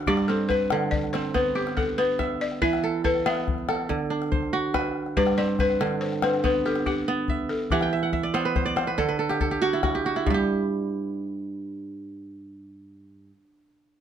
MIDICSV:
0, 0, Header, 1, 4, 480
1, 0, Start_track
1, 0, Key_signature, 1, "major"
1, 0, Tempo, 424628
1, 70, Time_signature, 12, 3, 24, 8
1, 15831, End_track
2, 0, Start_track
2, 0, Title_t, "Balafon"
2, 0, Program_c, 0, 12
2, 84, Note_on_c, 0, 67, 84
2, 318, Note_on_c, 0, 69, 75
2, 325, Note_off_c, 0, 67, 0
2, 551, Note_on_c, 0, 71, 89
2, 562, Note_off_c, 0, 69, 0
2, 1030, Note_on_c, 0, 74, 83
2, 1047, Note_off_c, 0, 71, 0
2, 1255, Note_off_c, 0, 74, 0
2, 1277, Note_on_c, 0, 72, 79
2, 1521, Note_on_c, 0, 71, 80
2, 1523, Note_off_c, 0, 72, 0
2, 1760, Note_on_c, 0, 67, 76
2, 1765, Note_off_c, 0, 71, 0
2, 1998, Note_on_c, 0, 69, 85
2, 2004, Note_off_c, 0, 67, 0
2, 2239, Note_on_c, 0, 71, 87
2, 2244, Note_off_c, 0, 69, 0
2, 2684, Note_off_c, 0, 71, 0
2, 2727, Note_on_c, 0, 74, 93
2, 2833, Note_off_c, 0, 74, 0
2, 2961, Note_on_c, 0, 76, 103
2, 3405, Note_off_c, 0, 76, 0
2, 3445, Note_on_c, 0, 71, 88
2, 3551, Note_off_c, 0, 71, 0
2, 3687, Note_on_c, 0, 76, 93
2, 5077, Note_off_c, 0, 76, 0
2, 5842, Note_on_c, 0, 71, 106
2, 6079, Note_on_c, 0, 74, 101
2, 6086, Note_off_c, 0, 71, 0
2, 6301, Note_off_c, 0, 74, 0
2, 6333, Note_on_c, 0, 71, 97
2, 6793, Note_on_c, 0, 72, 89
2, 6819, Note_off_c, 0, 71, 0
2, 7018, Note_off_c, 0, 72, 0
2, 7047, Note_on_c, 0, 71, 90
2, 7153, Note_off_c, 0, 71, 0
2, 7293, Note_on_c, 0, 71, 85
2, 7527, Note_on_c, 0, 69, 84
2, 7532, Note_off_c, 0, 71, 0
2, 7633, Note_off_c, 0, 69, 0
2, 7759, Note_on_c, 0, 67, 85
2, 8471, Note_on_c, 0, 69, 82
2, 8499, Note_off_c, 0, 67, 0
2, 8720, Note_off_c, 0, 69, 0
2, 8722, Note_on_c, 0, 67, 81
2, 9633, Note_off_c, 0, 67, 0
2, 15831, End_track
3, 0, Start_track
3, 0, Title_t, "Kora"
3, 0, Program_c, 1, 46
3, 0, Note_on_c, 1, 50, 74
3, 0, Note_on_c, 1, 62, 59
3, 0, Note_on_c, 1, 66, 84
3, 0, Note_on_c, 1, 71, 59
3, 0, Note_on_c, 1, 72, 62
3, 85, Note_on_c, 1, 74, 70
3, 86, Note_on_c, 1, 43, 85
3, 127, Note_off_c, 1, 50, 0
3, 154, Note_off_c, 1, 66, 0
3, 333, Note_on_c, 1, 60, 62
3, 401, Note_off_c, 1, 71, 0
3, 470, Note_off_c, 1, 72, 0
3, 569, Note_on_c, 1, 71, 63
3, 776, Note_off_c, 1, 62, 0
3, 816, Note_on_c, 1, 50, 79
3, 1293, Note_off_c, 1, 60, 0
3, 1298, Note_on_c, 1, 60, 59
3, 1338, Note_off_c, 1, 74, 0
3, 1366, Note_off_c, 1, 71, 0
3, 1519, Note_on_c, 1, 59, 80
3, 1755, Note_on_c, 1, 67, 60
3, 2001, Note_on_c, 1, 78, 61
3, 2235, Note_off_c, 1, 59, 0
3, 2239, Note_on_c, 1, 59, 80
3, 2307, Note_off_c, 1, 60, 0
3, 2477, Note_on_c, 1, 76, 62
3, 2731, Note_off_c, 1, 43, 0
3, 2958, Note_on_c, 1, 52, 80
3, 2958, Note_on_c, 1, 71, 73
3, 3012, Note_off_c, 1, 50, 0
3, 3092, Note_off_c, 1, 78, 0
3, 3205, Note_on_c, 1, 69, 65
3, 3351, Note_off_c, 1, 67, 0
3, 3435, Note_off_c, 1, 69, 0
3, 3440, Note_on_c, 1, 69, 66
3, 3645, Note_off_c, 1, 76, 0
3, 3681, Note_off_c, 1, 59, 0
3, 3686, Note_on_c, 1, 59, 80
3, 4163, Note_off_c, 1, 69, 0
3, 4167, Note_on_c, 1, 69, 61
3, 4347, Note_off_c, 1, 71, 0
3, 4400, Note_on_c, 1, 50, 74
3, 4453, Note_off_c, 1, 52, 0
3, 4638, Note_on_c, 1, 62, 61
3, 4880, Note_on_c, 1, 72, 58
3, 4948, Note_off_c, 1, 59, 0
3, 5120, Note_on_c, 1, 66, 82
3, 5359, Note_on_c, 1, 71, 67
3, 5657, Note_off_c, 1, 69, 0
3, 5844, Note_on_c, 1, 43, 80
3, 5845, Note_on_c, 1, 74, 72
3, 5893, Note_off_c, 1, 50, 0
3, 5912, Note_off_c, 1, 66, 0
3, 6080, Note_on_c, 1, 60, 71
3, 6148, Note_off_c, 1, 71, 0
3, 6222, Note_off_c, 1, 72, 0
3, 6328, Note_on_c, 1, 71, 64
3, 6537, Note_off_c, 1, 62, 0
3, 6565, Note_on_c, 1, 50, 80
3, 7041, Note_off_c, 1, 60, 0
3, 7046, Note_on_c, 1, 60, 58
3, 7098, Note_off_c, 1, 74, 0
3, 7113, Note_off_c, 1, 71, 0
3, 7277, Note_on_c, 1, 59, 82
3, 7523, Note_on_c, 1, 67, 58
3, 7763, Note_on_c, 1, 78, 60
3, 7998, Note_off_c, 1, 59, 0
3, 8003, Note_on_c, 1, 59, 89
3, 8071, Note_off_c, 1, 60, 0
3, 8247, Note_on_c, 1, 76, 63
3, 8489, Note_off_c, 1, 43, 0
3, 8718, Note_off_c, 1, 78, 0
3, 8722, Note_on_c, 1, 78, 69
3, 8726, Note_on_c, 1, 52, 86
3, 8772, Note_off_c, 1, 50, 0
3, 8790, Note_off_c, 1, 67, 0
3, 8844, Note_on_c, 1, 79, 63
3, 8957, Note_off_c, 1, 76, 0
3, 8961, Note_on_c, 1, 76, 67
3, 9070, Note_off_c, 1, 78, 0
3, 9075, Note_on_c, 1, 78, 62
3, 9142, Note_off_c, 1, 79, 0
3, 9185, Note_off_c, 1, 76, 0
3, 9189, Note_on_c, 1, 76, 65
3, 9307, Note_on_c, 1, 74, 70
3, 9423, Note_off_c, 1, 59, 0
3, 9425, Note_on_c, 1, 72, 75
3, 9428, Note_on_c, 1, 59, 85
3, 9555, Note_on_c, 1, 71, 72
3, 9670, Note_off_c, 1, 72, 0
3, 9675, Note_on_c, 1, 72, 67
3, 9780, Note_off_c, 1, 74, 0
3, 9785, Note_on_c, 1, 74, 76
3, 9900, Note_off_c, 1, 72, 0
3, 9905, Note_on_c, 1, 72, 65
3, 9972, Note_off_c, 1, 59, 0
3, 9972, Note_off_c, 1, 71, 0
3, 10029, Note_on_c, 1, 71, 66
3, 10149, Note_on_c, 1, 50, 80
3, 10153, Note_on_c, 1, 69, 69
3, 10165, Note_off_c, 1, 78, 0
3, 10211, Note_off_c, 1, 52, 0
3, 10266, Note_off_c, 1, 71, 0
3, 10271, Note_on_c, 1, 71, 69
3, 10339, Note_off_c, 1, 72, 0
3, 10358, Note_off_c, 1, 76, 0
3, 10383, Note_off_c, 1, 69, 0
3, 10388, Note_on_c, 1, 69, 68
3, 10506, Note_on_c, 1, 67, 70
3, 10630, Note_off_c, 1, 69, 0
3, 10634, Note_on_c, 1, 69, 65
3, 10748, Note_off_c, 1, 67, 0
3, 10752, Note_on_c, 1, 67, 63
3, 10871, Note_on_c, 1, 66, 75
3, 10875, Note_off_c, 1, 66, 0
3, 10875, Note_on_c, 1, 66, 78
3, 11001, Note_on_c, 1, 64, 65
3, 11037, Note_off_c, 1, 74, 0
3, 11113, Note_off_c, 1, 66, 0
3, 11117, Note_on_c, 1, 66, 65
3, 11185, Note_off_c, 1, 67, 0
3, 11246, Note_on_c, 1, 67, 72
3, 11365, Note_off_c, 1, 66, 0
3, 11370, Note_on_c, 1, 66, 67
3, 11482, Note_off_c, 1, 64, 0
3, 11487, Note_on_c, 1, 64, 68
3, 11603, Note_on_c, 1, 43, 72
3, 11647, Note_on_c, 1, 55, 71
3, 11649, Note_off_c, 1, 50, 0
3, 11661, Note_off_c, 1, 71, 0
3, 11671, Note_off_c, 1, 66, 0
3, 11688, Note_off_c, 1, 67, 0
3, 11692, Note_on_c, 1, 67, 75
3, 12124, Note_off_c, 1, 69, 0
3, 13258, Note_off_c, 1, 64, 0
3, 15031, Note_off_c, 1, 43, 0
3, 15075, Note_off_c, 1, 55, 0
3, 15120, Note_off_c, 1, 67, 0
3, 15831, End_track
4, 0, Start_track
4, 0, Title_t, "Calabash"
4, 75, Note_on_c, 9, 36, 62
4, 75, Note_on_c, 9, 38, 19
4, 188, Note_off_c, 9, 36, 0
4, 188, Note_off_c, 9, 38, 0
4, 195, Note_on_c, 9, 38, 47
4, 308, Note_off_c, 9, 38, 0
4, 562, Note_on_c, 9, 36, 63
4, 562, Note_on_c, 9, 38, 19
4, 675, Note_off_c, 9, 36, 0
4, 675, Note_off_c, 9, 38, 0
4, 682, Note_on_c, 9, 38, 19
4, 795, Note_off_c, 9, 38, 0
4, 797, Note_on_c, 9, 38, 65
4, 910, Note_off_c, 9, 38, 0
4, 921, Note_on_c, 9, 38, 23
4, 1034, Note_off_c, 9, 38, 0
4, 1042, Note_on_c, 9, 36, 63
4, 1155, Note_off_c, 9, 36, 0
4, 1170, Note_on_c, 9, 38, 21
4, 1283, Note_off_c, 9, 38, 0
4, 1287, Note_on_c, 9, 38, 59
4, 1400, Note_off_c, 9, 38, 0
4, 1402, Note_on_c, 9, 38, 18
4, 1515, Note_off_c, 9, 38, 0
4, 1527, Note_on_c, 9, 36, 56
4, 1640, Note_off_c, 9, 36, 0
4, 1767, Note_on_c, 9, 38, 17
4, 1881, Note_off_c, 9, 38, 0
4, 1887, Note_on_c, 9, 38, 47
4, 2000, Note_off_c, 9, 38, 0
4, 2003, Note_on_c, 9, 36, 58
4, 2003, Note_on_c, 9, 38, 19
4, 2116, Note_off_c, 9, 36, 0
4, 2116, Note_off_c, 9, 38, 0
4, 2123, Note_on_c, 9, 38, 19
4, 2236, Note_off_c, 9, 38, 0
4, 2478, Note_on_c, 9, 36, 56
4, 2478, Note_on_c, 9, 38, 56
4, 2591, Note_off_c, 9, 36, 0
4, 2591, Note_off_c, 9, 38, 0
4, 2844, Note_on_c, 9, 38, 18
4, 2957, Note_off_c, 9, 38, 0
4, 2959, Note_on_c, 9, 36, 52
4, 2959, Note_on_c, 9, 38, 18
4, 3072, Note_off_c, 9, 36, 0
4, 3072, Note_off_c, 9, 38, 0
4, 3089, Note_on_c, 9, 38, 40
4, 3203, Note_off_c, 9, 38, 0
4, 3443, Note_on_c, 9, 36, 56
4, 3443, Note_on_c, 9, 38, 18
4, 3556, Note_off_c, 9, 36, 0
4, 3556, Note_off_c, 9, 38, 0
4, 3561, Note_on_c, 9, 38, 19
4, 3674, Note_off_c, 9, 38, 0
4, 3685, Note_on_c, 9, 38, 64
4, 3798, Note_off_c, 9, 38, 0
4, 3806, Note_on_c, 9, 38, 19
4, 3919, Note_off_c, 9, 38, 0
4, 3931, Note_on_c, 9, 36, 65
4, 4044, Note_off_c, 9, 36, 0
4, 4049, Note_on_c, 9, 38, 22
4, 4162, Note_off_c, 9, 38, 0
4, 4167, Note_on_c, 9, 38, 59
4, 4280, Note_off_c, 9, 38, 0
4, 4409, Note_on_c, 9, 36, 63
4, 4522, Note_off_c, 9, 36, 0
4, 4648, Note_on_c, 9, 38, 19
4, 4761, Note_off_c, 9, 38, 0
4, 4768, Note_on_c, 9, 38, 48
4, 4881, Note_off_c, 9, 38, 0
4, 4885, Note_on_c, 9, 36, 68
4, 4885, Note_on_c, 9, 38, 20
4, 4998, Note_off_c, 9, 36, 0
4, 4998, Note_off_c, 9, 38, 0
4, 5004, Note_on_c, 9, 38, 21
4, 5117, Note_off_c, 9, 38, 0
4, 5363, Note_on_c, 9, 36, 63
4, 5363, Note_on_c, 9, 38, 69
4, 5476, Note_off_c, 9, 36, 0
4, 5476, Note_off_c, 9, 38, 0
4, 5724, Note_on_c, 9, 38, 21
4, 5838, Note_off_c, 9, 38, 0
4, 5841, Note_on_c, 9, 36, 66
4, 5841, Note_on_c, 9, 38, 22
4, 5954, Note_off_c, 9, 36, 0
4, 5954, Note_off_c, 9, 38, 0
4, 5954, Note_on_c, 9, 38, 50
4, 6067, Note_off_c, 9, 38, 0
4, 6318, Note_on_c, 9, 36, 63
4, 6318, Note_on_c, 9, 38, 20
4, 6431, Note_off_c, 9, 36, 0
4, 6431, Note_off_c, 9, 38, 0
4, 6441, Note_on_c, 9, 38, 22
4, 6554, Note_off_c, 9, 38, 0
4, 6566, Note_on_c, 9, 38, 69
4, 6679, Note_off_c, 9, 38, 0
4, 6683, Note_on_c, 9, 38, 22
4, 6796, Note_off_c, 9, 38, 0
4, 6923, Note_on_c, 9, 38, 22
4, 7036, Note_off_c, 9, 38, 0
4, 7036, Note_on_c, 9, 38, 67
4, 7149, Note_off_c, 9, 38, 0
4, 7163, Note_on_c, 9, 38, 19
4, 7276, Note_off_c, 9, 38, 0
4, 7282, Note_on_c, 9, 36, 65
4, 7395, Note_off_c, 9, 36, 0
4, 7526, Note_on_c, 9, 38, 20
4, 7637, Note_off_c, 9, 38, 0
4, 7637, Note_on_c, 9, 38, 53
4, 7750, Note_off_c, 9, 38, 0
4, 7755, Note_on_c, 9, 36, 62
4, 7755, Note_on_c, 9, 38, 20
4, 7868, Note_off_c, 9, 36, 0
4, 7868, Note_off_c, 9, 38, 0
4, 7875, Note_on_c, 9, 38, 21
4, 7988, Note_off_c, 9, 38, 0
4, 8231, Note_on_c, 9, 36, 62
4, 8344, Note_off_c, 9, 36, 0
4, 8593, Note_on_c, 9, 38, 19
4, 8706, Note_off_c, 9, 38, 0
4, 8709, Note_on_c, 9, 36, 61
4, 8709, Note_on_c, 9, 38, 19
4, 8822, Note_off_c, 9, 36, 0
4, 8822, Note_off_c, 9, 38, 0
4, 8828, Note_on_c, 9, 38, 46
4, 8941, Note_off_c, 9, 38, 0
4, 9075, Note_on_c, 9, 38, 20
4, 9187, Note_off_c, 9, 38, 0
4, 9187, Note_on_c, 9, 36, 60
4, 9187, Note_on_c, 9, 38, 20
4, 9300, Note_off_c, 9, 36, 0
4, 9300, Note_off_c, 9, 38, 0
4, 9435, Note_on_c, 9, 38, 66
4, 9548, Note_off_c, 9, 38, 0
4, 9558, Note_on_c, 9, 38, 23
4, 9671, Note_off_c, 9, 38, 0
4, 9673, Note_on_c, 9, 36, 68
4, 9673, Note_on_c, 9, 38, 20
4, 9786, Note_off_c, 9, 36, 0
4, 9786, Note_off_c, 9, 38, 0
4, 9796, Note_on_c, 9, 38, 22
4, 9909, Note_off_c, 9, 38, 0
4, 9914, Note_on_c, 9, 38, 64
4, 10027, Note_off_c, 9, 38, 0
4, 10152, Note_on_c, 9, 36, 61
4, 10265, Note_off_c, 9, 36, 0
4, 10521, Note_on_c, 9, 38, 50
4, 10632, Note_on_c, 9, 36, 65
4, 10634, Note_off_c, 9, 38, 0
4, 10745, Note_off_c, 9, 36, 0
4, 10760, Note_on_c, 9, 38, 23
4, 10873, Note_off_c, 9, 38, 0
4, 10995, Note_on_c, 9, 38, 20
4, 11108, Note_off_c, 9, 38, 0
4, 11113, Note_on_c, 9, 36, 59
4, 11113, Note_on_c, 9, 38, 63
4, 11226, Note_off_c, 9, 36, 0
4, 11226, Note_off_c, 9, 38, 0
4, 11363, Note_on_c, 9, 38, 22
4, 11476, Note_off_c, 9, 38, 0
4, 11484, Note_on_c, 9, 38, 20
4, 11597, Note_off_c, 9, 38, 0
4, 11605, Note_on_c, 9, 36, 78
4, 11718, Note_off_c, 9, 36, 0
4, 15831, End_track
0, 0, End_of_file